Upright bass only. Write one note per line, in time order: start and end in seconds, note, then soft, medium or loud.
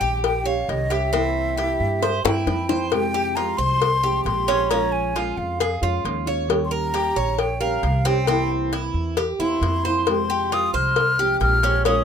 0.01 0.64 A#1 loud
0.69 1.74 C2 medium
1.80 2.21 G2 medium
2.25 2.45 G2 medium
2.47 3.52 F2 loud
3.58 4.21 C2 loud
4.25 5.31 A#1 loud
5.37 5.79 F2 loud
5.82 6.03 F2 medium
6.05 7.10 D#2 loud
7.16 7.79 A#1 loud
7.83 8.89 C2 loud
8.94 9.36 E2 medium
9.39 9.60 E2 medium
9.61 10.67 F2 loud
10.74 11.37 C2 medium
11.41 12.04 A#1 loud